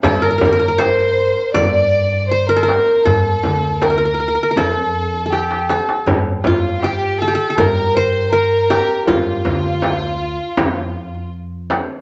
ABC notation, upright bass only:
X:1
M:4/4
L:1/8
Q:1/4=80
K:none
V:1 name="Upright bass" clef=bass
G,, G,,3 G,,4 | G,, D,,3 F,,4 | G,, G,,3 G,,4 | G,, D,,3 F,,4 |]